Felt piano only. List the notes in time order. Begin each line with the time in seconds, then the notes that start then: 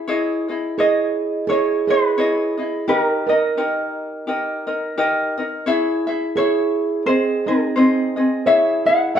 0.78 G#4
1.47 G#4
1.87 G#4
2.88 G4
3.27 A#4
6.36 G#4
7.06 G#4
7.46 D#4
8.46 C#5
8.86 D#5
9.15 E5